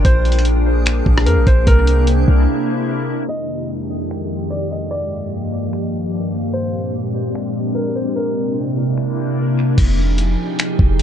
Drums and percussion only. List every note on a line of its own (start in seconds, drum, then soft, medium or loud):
0.05 kick loud
0.05 closed hi-hat medium
0.25 closed hi-hat soft
0.32 closed hi-hat medium
0.39 closed hi-hat medium
0.45 closed hi-hat medium
0.86 finger snap loud
0.86 closed hi-hat medium
1.06 kick medium
1.18 cross-stick loud
1.27 closed hi-hat medium
1.47 kick loud
1.47 closed hi-hat medium
1.67 kick loud
1.67 closed hi-hat medium
1.87 closed hi-hat medium
2.07 closed hi-hat medium
4.11 finger snap loud
5.73 finger snap loud
7.35 finger snap loud
8.76 open hi-hat medium
8.98 finger snap loud
9.78 kick loud
9.78 closed hi-hat medium
9.78 crash medium
10.18 closed hi-hat medium
10.59 finger snap loud
10.59 closed hi-hat medium
10.79 kick medium